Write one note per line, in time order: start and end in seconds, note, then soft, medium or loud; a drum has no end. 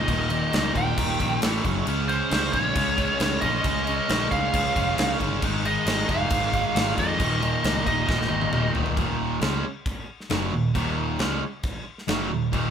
0.00 0.72 D#5 medium
0.08 0.42 D#1 medium
0.08 0.29 D#2 medium
0.08 0.29 A#2 medium
0.08 0.30 D#3 loud
0.08 kick loud
0.08 crash medium
0.30 0.51 D#2 loud
0.30 0.52 A#2 loud
0.30 0.52 D#3 medium
0.30 crash medium
0.53 0.70 C#2 medium
0.53 0.74 D#2 medium
0.53 0.74 A#2 medium
0.53 0.75 D#3 loud
0.53 snare loud
0.53 crash medium
0.75 0.92 D#1 medium
0.75 0.97 D#2 medium
0.75 0.97 A#2 medium
0.75 0.98 D#3 medium
0.75 1.39 G5 medium
0.75 kick medium
0.75 crash medium
0.98 1.15 D#1 loud
0.98 1.19 D#2 medium
0.98 1.19 A#2 loud
0.98 1.20 D#3 loud
0.98 kick loud
0.98 crash medium
1.20 1.37 A#1 medium
1.20 1.41 D#2 medium
1.20 1.41 A#2 medium
1.20 1.41 D#3 medium
1.20 kick medium
1.20 crash medium
1.42 1.60 A1 medium
1.42 1.63 A2 medium
1.42 1.63 E3 medium
1.42 1.64 A3 medium
1.42 snare loud
1.42 crash loud
1.64 1.82 F#1 medium
1.64 1.85 F#2 medium
1.64 1.85 C#3 loud
1.64 1.86 F#3 medium
1.64 kick medium
1.64 crash medium
1.86 2.21 C#2 medium
1.86 2.08 C#3 loud
1.86 2.09 G#3 medium
1.86 2.09 C#4 loud
1.86 crash medium
2.08 2.30 C#3 medium
2.08 2.30 G#3 medium
2.08 2.31 C#4 medium
2.08 2.53 C5 medium
2.08 crash medium
2.30 2.49 C#2 medium
2.30 2.52 C#3 medium
2.30 2.53 G#3 medium
2.30 2.53 C#4 medium
2.30 snare loud
2.30 crash medium
2.53 2.71 A#1 medium
2.53 2.73 C#3 medium
2.53 2.75 G#3 medium
2.53 2.75 C#4 medium
2.53 3.41 C#5 medium
2.53 kick medium
2.53 crash medium
2.75 3.10 C#2 medium
2.75 2.96 C#3 loud
2.75 2.97 G#3 loud
2.75 2.96 C#4 loud
2.75 kick loud
2.75 crash medium
2.97 3.18 C#3 medium
2.97 3.19 G#3 medium
2.97 3.19 C#4 medium
2.97 kick medium
2.97 crash medium
3.19 3.37 C#2 medium
3.19 3.41 C#3 medium
3.19 3.42 G#3 medium
3.19 3.42 C#4 medium
3.19 snare loud
3.19 crash medium
3.41 3.60 A#1 medium
3.41 3.63 C#3 medium
3.41 3.65 G#3 medium
3.41 3.64 C#4 medium
3.41 4.27 D#5 medium
3.41 kick medium
3.41 crash medium
3.64 3.98 C#2 medium
3.64 3.86 C#3 medium
3.64 3.88 G#3 medium
3.64 3.87 C#4 loud
3.64 kick loud
3.64 crash medium
3.87 4.07 C#3 medium
3.87 4.09 G#3 medium
3.87 4.08 C#4 loud
3.87 crash medium
4.08 4.27 A#1 loud
4.08 4.31 C#3 medium
4.08 4.32 G#3 medium
4.08 4.32 C#4 loud
4.08 snare loud
4.08 crash medium
4.31 4.48 C#2 medium
4.31 4.52 C#3 medium
4.31 4.53 G#3 medium
4.31 4.53 C#4 medium
4.31 5.16 F5 loud
4.31 kick medium
4.31 crash soft
4.53 4.71 C#2 medium
4.53 4.74 C#3 loud
4.53 4.75 G#3 loud
4.53 4.76 C#4 loud
4.53 kick loud
4.53 crash medium
4.76 4.93 F1 medium
4.76 4.96 C#3 medium
4.76 4.97 G#3 medium
4.76 4.97 C#4 loud
4.76 kick loud
4.76 crash medium
4.97 5.15 C#2 medium
4.97 5.18 C#3 medium
4.97 5.19 G#3 medium
4.97 5.20 C#4 medium
4.97 snare loud
4.97 crash medium
5.20 5.38 G1 medium
5.20 5.41 C#3 medium
5.20 5.41 G#3 medium
5.20 5.41 C#4 loud
5.20 kick medium
5.20 crash medium
5.42 5.76 G#1 loud
5.42 5.63 G#2 medium
5.42 5.63 D#3 medium
5.42 5.64 G#3 loud
5.42 kick loud
5.42 crash medium
5.64 5.86 G#2 medium
5.64 5.86 D#3 loud
5.64 5.87 G#3 loud
5.64 6.11 D#5 medium
5.64 crash medium
5.86 6.03 G#1 loud
5.86 6.08 G#2 medium
5.86 6.08 D#3 medium
5.86 6.08 G#3 loud
5.86 snare loud
5.86 crash medium
6.09 6.26 F1 medium
6.09 6.30 G#2 medium
6.09 6.30 D#3 medium
6.09 6.31 G#3 medium
6.09 6.94 F5 loud
6.09 kick medium
6.09 crash medium
6.30 6.65 G#1 medium
6.30 6.51 G#2 medium
6.30 6.52 D#3 loud
6.30 6.52 G#3 loud
6.30 kick loud
6.30 crash medium
6.53 6.74 G#2 medium
6.53 6.75 D#3 medium
6.53 6.75 G#3 loud
6.53 kick medium
6.53 crash medium
6.75 6.92 G#1 medium
6.75 6.96 G#2 medium
6.75 6.96 D#3 medium
6.75 6.97 G#3 medium
6.75 snare loud
6.75 crash medium
6.97 7.21 F2 medium
6.97 7.18 G#2 medium
6.97 7.18 D#3 medium
6.97 7.19 G#3 loud
6.97 7.83 D#5 medium
6.97 kick medium
6.97 crash medium
7.19 7.54 D#1 loud
7.19 7.40 D#2 medium
7.19 7.40 A#2 medium
7.19 7.41 D#3 medium
7.19 kick loud
7.19 crash medium
7.41 7.62 D#2 medium
7.41 7.63 A#2 medium
7.41 7.63 D#3 medium
7.41 crash medium
7.63 7.81 C#2 loud
7.63 7.84 D#2 medium
7.63 7.85 A#2 medium
7.63 7.86 D#3 loud
7.63 snare loud
7.63 crash medium
7.86 8.03 D#1 medium
7.86 8.06 D#2 medium
7.86 8.07 A#2 medium
7.86 8.07 D#3 loud
7.86 8.71 D#5 medium
7.86 kick medium
7.86 crash medium
8.07 8.26 D#1 loud
8.07 8.29 D#2 medium
8.07 8.30 A#2 medium
8.07 8.30 D#3 loud
8.07 kick loud
8.07 snare medium
8.21 snare medium
8.30 8.48 G#1 medium
8.30 8.52 D#2 medium
8.30 8.52 A#2 medium
8.30 8.53 D#3 medium
8.42 high tom medium
8.53 8.70 D#1 medium
8.53 8.73 D#2 medium
8.53 8.74 A#2 medium
8.53 8.74 D#3 medium
8.53 mid tom loud
8.75 8.92 D#1 medium
8.75 8.96 D#2 medium
8.75 8.96 A#2 medium
8.75 8.96 D#3 medium
8.75 floor tom medium
8.86 floor tom medium
8.97 9.39 D#1 medium
8.97 9.41 D#2 medium
8.97 9.41 A#2 loud
8.97 9.41 D#3 medium
8.97 kick loud
8.97 crash medium
9.41 9.62 C#2 loud
9.41 9.63 C#3 medium
9.41 9.63 G#3 medium
9.41 9.64 C#4 loud
9.41 snare loud
9.41 crash medium
9.86 kick loud
9.86 crash medium
10.20 snare soft
10.30 10.52 F#1 medium
10.30 10.52 F#2 medium
10.30 10.52 C#3 loud
10.30 10.52 F#3 loud
10.30 snare loud
10.30 crash medium
10.52 10.74 D#1 medium
10.52 10.70 D#2 medium
10.52 10.71 A#2 medium
10.74 11.17 D#1 medium
10.74 11.19 D#2 medium
10.74 11.18 A#2 medium
10.74 11.19 D#3 medium
10.74 kick medium
10.74 crash medium
11.19 11.41 C#2 loud
11.19 11.41 C#3 medium
11.19 11.41 G#3 medium
11.19 11.41 C#4 loud
11.19 snare loud
11.19 crash medium
11.63 kick loud
11.63 crash medium
11.98 snare soft
12.07 12.29 F#1 medium
12.07 12.30 F#2 medium
12.07 12.30 C#3 medium
12.07 12.30 F#3 loud
12.07 snare loud
12.07 crash medium
12.31 12.52 D#1 medium
12.31 12.49 D#2 medium
12.31 12.49 A#2 medium
12.52 12.70 D#1 medium
12.52 12.70 D#2 medium
12.52 12.70 A#2 medium
12.52 12.70 D#3 medium
12.52 kick loud
12.52 crash medium